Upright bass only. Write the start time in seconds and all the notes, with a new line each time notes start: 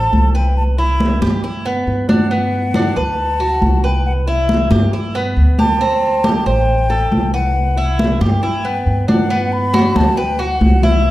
0.13 C2
1.22 G2
1.87 G2
2.96 D2
3.62 C2
4.71 G2
5.37 D2
6.46 A1
7.12 C2
8.21 G2
8.86 G2
9.95 D2
10.61 C2